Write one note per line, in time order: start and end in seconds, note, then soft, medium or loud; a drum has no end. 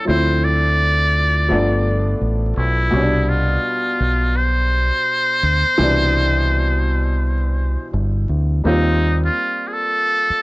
0.05 1.52 D2 loud
0.05 1.46 F3 medium
0.05 1.47 A3 soft
0.05 1.47 C4 medium
0.05 1.48 E4 medium
0.05 0.46 C5 loud
0.44 2.33 D5 loud
1.48 2.14 G1 medium
1.48 2.89 F3 medium
1.48 2.90 A3 medium
1.48 2.90 B3 medium
1.48 2.91 D4 medium
2.21 2.53 A1 medium
2.57 2.89 B1 medium
2.57 3.30 E4 medium
2.90 3.56 C2 loud
2.90 5.73 B2 medium
2.90 5.74 G3 medium
2.90 3.02 C#4 soft
3.00 5.78 D4 medium
3.29 4.38 F4 medium
4.00 4.90 B1 medium
4.36 7.93 C5 loud
5.43 5.63 D2 medium
5.78 7.76 C2 loud
5.78 8.61 B2 medium
5.78 8.60 E3 medium
5.78 8.60 G3 medium
5.78 8.62 D4 medium
7.94 8.25 G1 loud
8.29 8.61 D2 medium
8.64 9.28 D#2 loud
8.64 10.42 G3 medium
8.64 10.42 A#3 medium
8.64 10.42 C4 medium
8.64 9.19 D#4 medium
8.64 10.42 F4 medium
9.25 9.69 F4 medium
9.67 9.74 G#4 medium
9.73 10.42 A4 loud
10.30 muted fingered electric bass stroke soft